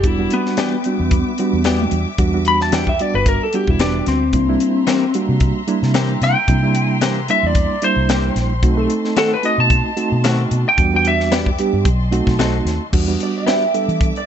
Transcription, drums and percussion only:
0.04 kick, closed hi-hat
0.30 closed hi-hat
0.46 snare
0.57 snare, closed hi-hat
0.84 closed hi-hat
1.11 kick, closed hi-hat
1.38 closed hi-hat
1.64 snare, closed hi-hat
1.91 closed hi-hat
2.18 kick, closed hi-hat
2.45 closed hi-hat
2.61 snare
2.72 snare, closed hi-hat
2.87 kick
2.99 closed hi-hat
3.26 kick, closed hi-hat
3.53 closed hi-hat
3.67 kick
3.79 snare, closed hi-hat
4.06 snare, closed hi-hat
4.33 kick, closed hi-hat
4.60 closed hi-hat
4.87 snare, closed hi-hat
5.14 closed hi-hat
5.40 kick, closed hi-hat
5.68 closed hi-hat
5.83 snare
5.94 snare, closed hi-hat
6.22 snare, closed hi-hat
6.48 kick, closed hi-hat
6.75 closed hi-hat
7.01 snare, closed hi-hat
7.28 closed hi-hat
7.55 kick, closed hi-hat
7.82 closed hi-hat
8.09 snare, closed hi-hat
8.36 snare, closed hi-hat
8.63 kick, closed hi-hat
8.90 closed hi-hat
9.05 snare
9.17 snare, closed hi-hat
9.43 closed hi-hat
9.70 kick, closed hi-hat
9.97 closed hi-hat
10.24 snare, closed hi-hat
10.51 closed hi-hat
10.78 kick, closed hi-hat
11.05 closed hi-hat
11.20 snare
11.32 snare, closed hi-hat
11.46 kick
11.59 closed hi-hat
11.85 kick, closed hi-hat
12.12 closed hi-hat
12.27 kick, snare
12.39 snare, closed hi-hat
12.67 snare, closed hi-hat
12.93 kick, crash
13.20 closed hi-hat
13.47 snare, closed hi-hat
13.74 closed hi-hat
13.89 closed hi-hat
14.01 kick, closed hi-hat
14.16 closed hi-hat

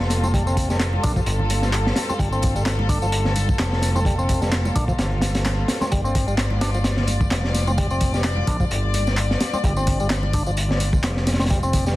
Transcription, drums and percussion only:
0.00 snare
0.10 snare, closed hi-hat, open hi-hat, tambourine
0.23 tambourine, high conga
0.34 kick, closed hi-hat, tambourine, low conga
0.47 tambourine
0.57 kick, closed hi-hat, open hi-hat, tambourine, low conga
0.70 snare, tambourine
0.80 snare, clap, closed hi-hat, tambourine
0.93 high conga
1.04 kick, closed hi-hat, open hi-hat, tambourine
1.16 kick, tambourine
1.26 closed hi-hat, tambourine
1.39 low conga
1.50 closed hi-hat, open hi-hat, tambourine, high conga
1.62 snare, tambourine
1.73 clap, closed hi-hat, tambourine
1.87 snare
1.96 snare, closed hi-hat, open hi-hat, tambourine
2.09 tambourine, high conga
2.19 kick, closed hi-hat, tambourine, low conga
2.32 tambourine
2.42 kick, closed hi-hat, open hi-hat, tambourine, low conga
2.56 tambourine
2.66 snare, clap, closed hi-hat, tambourine
2.79 high conga
2.89 kick, closed hi-hat, open hi-hat, tambourine
3.02 tambourine
3.12 closed hi-hat, tambourine
3.25 snare, low conga
3.36 closed hi-hat, open hi-hat, tambourine, high conga
3.49 kick, tambourine
3.59 snare, clap, closed hi-hat, tambourine
3.73 snare
3.82 snare, closed hi-hat, open hi-hat, tambourine
3.96 tambourine, high conga
4.05 kick, closed hi-hat, tambourine, low conga
4.19 tambourine
4.29 kick, closed hi-hat, open hi-hat, tambourine, low conga
4.42 snare, tambourine
4.52 snare, clap, closed hi-hat, tambourine
4.65 tambourine, high conga
4.76 kick, closed hi-hat, open hi-hat, tambourine
4.88 kick, tambourine
4.99 snare, closed hi-hat, tambourine
5.12 low conga
5.22 snare, closed hi-hat, open hi-hat, tambourine, high conga
5.35 snare, closed hi-hat, tambourine
5.46 snare, clap, closed hi-hat, tambourine
5.68 snare, closed hi-hat, open hi-hat, tambourine
5.81 snare, tambourine, high conga
5.92 kick, closed hi-hat, tambourine, low conga
6.05 tambourine
6.15 kick, closed hi-hat, open hi-hat, tambourine, low conga
6.28 tambourine
6.38 snare, clap, closed hi-hat, tambourine
6.50 high conga
6.61 snare, closed hi-hat, open hi-hat, tambourine
6.74 tambourine
6.84 snare, closed hi-hat, tambourine
6.97 snare, low conga
7.07 closed hi-hat, open hi-hat, tambourine, high conga
7.21 kick, tambourine
7.31 snare, clap, closed hi-hat, tambourine
7.45 snare
7.54 snare, closed hi-hat, open hi-hat, tambourine
7.67 tambourine, high conga
7.78 kick, closed hi-hat, tambourine, low conga
7.90 tambourine
8.01 kick, closed hi-hat, open hi-hat, tambourine, low conga
8.14 snare, tambourine
8.24 snare, clap, closed hi-hat, tambourine
8.37 high conga
8.47 kick, closed hi-hat, open hi-hat, tambourine
8.60 kick, tambourine
8.71 closed hi-hat, tambourine
8.83 low conga
8.94 closed hi-hat, open hi-hat, tambourine, high conga
9.07 snare, tambourine
9.17 clap, closed hi-hat, tambourine
9.31 snare
9.40 snare, closed hi-hat, open hi-hat, tambourine
9.53 tambourine, high conga
9.64 kick, closed hi-hat, tambourine, low conga
9.76 tambourine
9.87 kick, closed hi-hat, open hi-hat, tambourine, low conga
10.00 tambourine
10.10 snare, clap, closed hi-hat, tambourine
10.23 high conga
10.33 kick, closed hi-hat, open hi-hat, tambourine
10.46 tambourine
10.57 closed hi-hat, tambourine
10.69 snare, low conga
10.80 closed hi-hat, open hi-hat, tambourine, high conga
10.93 kick, tambourine
11.04 snare, clap, closed hi-hat, tambourine
11.16 snare
11.27 snare, closed hi-hat, open hi-hat, tambourine
11.34 snare, closed hi-hat
11.39 snare, closed hi-hat, tambourine, high conga
11.46 snare, closed hi-hat
11.50 kick, closed hi-hat, tambourine, low conga
11.63 tambourine
11.73 kick, closed hi-hat, open hi-hat, tambourine, low conga
11.86 snare, tambourine

